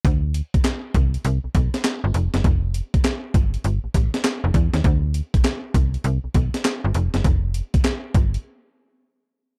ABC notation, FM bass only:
X:1
M:4/4
L:1/16
Q:"Swing 16ths" 1/4=100
K:C
V:1 name="FM bass" clef=bass
D,,3 z3 C,,2 C,, B,,, B,,, z2 G,,, F,,, ^F,,, | F,,,3 z3 G,,,2 G,,, A,,, A,,, z2 F,,, E,, _E,, | D,,3 z3 C,,2 C,, B,,, B,,, z2 G,,, F,,, ^F,,, | F,,,3 z3 G,,,2 z8 |]